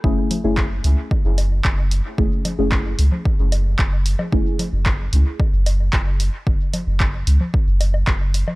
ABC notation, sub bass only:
X:1
M:4/4
L:1/16
Q:1/4=112
K:F#m
V:1 name="Sub bass" clef=bass
F,,, z2 F,,,3 C,, z2 F,,,3 F,,,3 z | F,,, z2 F,,,3 C,, z2 F,,,3 F,,,3 z | F,,, z2 F,,,3 C,, z2 F,,,3 F,,,3 z | F,,, z2 F,,,3 C,, z2 F,,,3 F,,,3 z |]